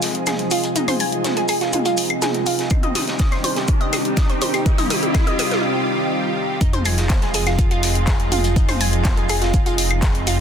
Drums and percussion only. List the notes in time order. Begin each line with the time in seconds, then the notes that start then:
0.02 snare, open hi-hat, shaker
0.15 closed hi-hat
0.26 snare, closed hi-hat, mid tom, claves, shaker
0.39 closed hi-hat
0.50 open hi-hat, shaker
0.64 closed hi-hat
0.76 closed hi-hat, mid tom, shaker
0.88 closed hi-hat, open hi-hat, mid tom, claves
1.00 open hi-hat, shaker
1.12 closed hi-hat
1.24 snare, closed hi-hat, mid tom, shaker
1.37 closed hi-hat
1.48 open hi-hat, claves, shaker
1.61 snare, closed hi-hat
1.73 closed hi-hat, mid tom, shaker
1.85 closed hi-hat
1.97 open hi-hat, shaker
2.10 closed hi-hat, claves
2.22 snare, closed hi-hat, mid tom, shaker
2.34 closed hi-hat
2.46 open hi-hat, shaker
2.59 snare, closed hi-hat
2.70 kick, closed hi-hat, mid tom, claves, shaker
2.83 closed hi-hat, mid tom
2.95 snare, open hi-hat, mid tom, shaker
3.08 snare, closed hi-hat
3.19 kick, snare, closed hi-hat, mid tom, shaker
3.32 snare, closed hi-hat, claves
3.44 open hi-hat, mid tom, shaker
3.56 snare, closed hi-hat
3.68 kick, closed hi-hat, mid tom, shaker
3.81 closed hi-hat
3.93 snare, open hi-hat, mid tom, claves, shaker
4.05 closed hi-hat
4.17 kick, snare, closed hi-hat, mid tom, shaker
4.30 closed hi-hat
4.41 open hi-hat, mid tom, shaker
4.54 closed hi-hat, claves
4.66 kick, closed hi-hat, mid tom, shaker
4.78 closed hi-hat, open hi-hat, mid tom
4.90 open hi-hat, mid tom, shaker
5.03 closed hi-hat, mid tom
5.14 kick, snare, closed hi-hat, mid tom, claves, shaker
5.27 closed hi-hat, mid tom
5.39 open hi-hat, mid tom, shaker
5.51 snare, closed hi-hat, mid tom
6.61 kick, closed hi-hat, shaker
6.73 closed hi-hat, mid tom
6.84 snare, open hi-hat, claves, shaker
6.97 snare, closed hi-hat
7.09 kick, snare, clap, closed hi-hat, mid tom, shaker
7.21 snare, closed hi-hat
7.34 open hi-hat, shaker
7.47 snare, closed hi-hat, claves
7.59 kick, closed hi-hat, shaker
7.71 closed hi-hat
7.83 snare, open hi-hat, shaker
7.95 closed hi-hat
8.07 kick, snare, clap, closed hi-hat, claves, shaker
8.20 closed hi-hat
8.32 open hi-hat, mid tom, shaker
8.44 closed hi-hat
8.56 kick, closed hi-hat, shaker
8.69 closed hi-hat, open hi-hat, mid tom, claves
8.81 open hi-hat, shaker
8.93 closed hi-hat
9.04 kick, snare, clap, closed hi-hat, mid tom, shaker
9.17 closed hi-hat
9.29 open hi-hat, claves, shaker
9.42 snare, closed hi-hat
9.54 kick, closed hi-hat, shaker
9.66 closed hi-hat
9.78 open hi-hat, shaker
9.91 closed hi-hat, claves
10.02 kick, snare, clap, closed hi-hat, shaker
10.15 closed hi-hat
10.27 open hi-hat, shaker